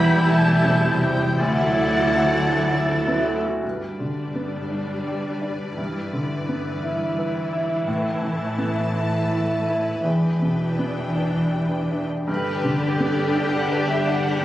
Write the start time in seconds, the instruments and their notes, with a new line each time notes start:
Already playing: double bass section E1, cello section E2, grand piano E2 G3 E4 G4, viola section G3 E4, french horn section B3, clarinet E4, violin section G4 B4 B5, flute G6
0.11 grand piano G4
0.27 french horn section A3, grand piano E4, violin section A5
0.47 grand piano G3
0.64 grand piano B2, violin section C5
0.84 grand piano C3
1.00 french horn section G3, grand piano G3, violin section G5
1.21 grand piano G4
1.38 cello section D2, double bass section D2, grand piano D2, french horn section F#3, viola section F#3 E4, clarinet E4, violin section A4 D5 F#5, flute A6
1.58 grand piano E4
1.76 grand piano A3
1.95 grand piano F#4
2.14 grand piano A3
2.32 grand piano F#4
2.52 grand piano A4
2.70 grand piano E4
2.89 grand piano A3
3.08 grand piano B3
3.27 grand piano A3
3.46 grand piano F#4
3.62 grand piano G2, cello section G2, viola section G3 D4, violin section B4 D5
4.00 grand piano D3
4.35 grand piano B3
4.71 grand piano D4
5.07 grand piano G4
5.42 grand piano D4
5.77 grand piano G2, viola section E3 E4
6.13 grand piano D3
6.49 grand piano B3
6.83 grand piano E4
7.19 grand piano B4
7.53 grand piano E4
7.87 cello section A2, grand piano A2, violin section B4 A5
8.22 grand piano E3
8.58 grand piano B3
8.95 grand piano E4
9.31 grand piano A4
9.68 grand piano E4
10.04 grand piano E2, cello section E2, viola section E3 D4, violin section G5
10.42 grand piano B2
10.79 grand piano B3
11.16 grand piano D4
11.53 grand piano G4
11.92 grand piano D4
12.28 double bass section G1, grand piano G2, viola section D3 D4, violin section G4 B4, cello section G4
12.63 grand piano D3
12.99 grand piano B3, violin section D5
13.35 grand piano D4, violin section G5
13.54 violin section F#5
13.71 grand piano B4, violin section D5
13.89 violin section E5
14.07 grand piano D4, violin section F#5
14.41 grand piano G2, viola section E3, violin section E4